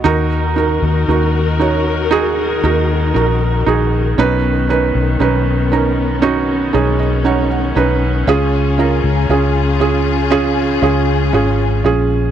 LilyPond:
<<
  \new Staff \with { instrumentName = "Felt piano" } { \time 4/4 \key ees \minor \tempo 4 = 58 << { ees''16 r2. r8. | r2 r8 cis''16 dis''16 fis''16 fis''8. | r1 | } \\ { <ees' ges' bes'>8 <ees' ges' bes'>8 <ees' ges' bes'>8 <ees' ges' des''>8 <ees' ges' aes'>8 <ees' ges' bes'>8 <ees' ges' bes'>8 <ees' ges' aes'>8 | <cis' dis' b'>8 <cis' dis' b'>8 <cis' dis' b'>8 <cis' dis' bes'>8 <cis' dis' fis'>8 <cis' dis' aes'>8 <cis' dis' cis''>8 <cis' dis' b'>8 | <des' f' aes'>8 <des' f' bes'>8 <des' f' aes'>8 <des' f' aes'>8 <des' f' aes'>8 <des' f' aes'>8 <des' f' aes'>8 <des' f' aes'>8 | } >> }
  \new Staff \with { instrumentName = "Felt piano" } { \clef bass \time 4/4 \key ees \minor ees4. r2 r8 | b,4. r2 r8 | des4. r2 r8 | }
  \new Staff \with { instrumentName = "String section" } { \time 4/4 \key ees \minor << { <ees' ges' bes'>1 | <b cis'>1 | <f' aes'>1 | } \\ { ees1~ | ees1 | des1 | } >> }
  \new Staff \with { instrumentName = "Fingered electric bass" } { \clef bass \time 4/4 \key ees \minor ees,8. ees,16 ees,4. ees,8 bes,,8 bes,,8 | b,,8. b,,16 b,,4. b,,4 b,,8 | des,8. des,16 des,4. des,8 aes,,8 bes,,8 | }
>>